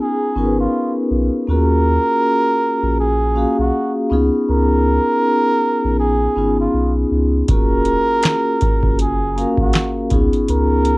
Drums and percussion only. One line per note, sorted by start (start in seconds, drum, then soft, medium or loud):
7.48 kick loud
7.48 closed hi-hat medium
7.85 closed hi-hat medium
8.23 snare loud
8.23 clap loud
8.23 closed hi-hat medium
8.61 kick loud
8.61 closed hi-hat medium
8.83 kick medium
8.99 closed hi-hat medium
9.38 closed hi-hat medium
9.58 kick medium
9.73 snare loud
9.73 clap medium
9.73 closed hi-hat medium
10.10 kick loud
10.10 closed hi-hat medium
10.33 closed hi-hat soft
10.48 closed hi-hat medium
10.85 closed hi-hat medium